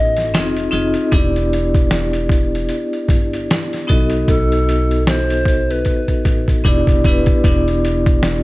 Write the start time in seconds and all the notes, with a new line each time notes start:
Already playing: A1 D#5
0.17 snare, closed hi-hat
0.34 F1 C4 D#4 F4 G#4 D#5, snare, closed hi-hat
0.57 closed hi-hat
0.71 F1 C4 D#4 F4 G#4 D#5, closed hi-hat
0.94 closed hi-hat
1.11 E1 B3 D4 E4 G4 D5, kick, closed hi-hat
1.36 closed hi-hat
1.53 closed hi-hat
1.74 kick, closed hi-hat
1.91 snare, closed hi-hat
2.13 closed hi-hat
2.29 kick, closed hi-hat
2.55 closed hi-hat
2.69 closed hi-hat
2.93 closed hi-hat
3.09 G1, kick, closed hi-hat
3.33 closed hi-hat
3.51 snare, closed hi-hat
3.73 snare, closed hi-hat
3.87 B1 B3 D#4 F#4 A4 D#5, kick, closed hi-hat
4.10 closed hi-hat
4.28 B1 A4, kick, closed hi-hat
4.52 closed hi-hat
4.69 closed hi-hat
4.91 closed hi-hat
5.07 C5, snare, closed hi-hat
5.30 closed hi-hat
5.45 kick, closed hi-hat
5.71 B4, closed hi-hat
5.85 kick, closed hi-hat
6.08 kick, closed hi-hat
6.25 A1, kick, closed hi-hat
6.48 kick, closed hi-hat
6.64 E1 B3 D4 E4 G4 D5, kick, closed hi-hat
6.87 kick, closed hi-hat
7.04 E1 B3 D4 E4 G4, kick, closed hi-hat
7.09 B4
7.26 kick, closed hi-hat
7.44 E1 B3 D4 E4 G4 D5, kick, closed hi-hat
7.68 closed hi-hat
7.85 closed hi-hat
8.06 kick, closed hi-hat
8.23 snare, closed hi-hat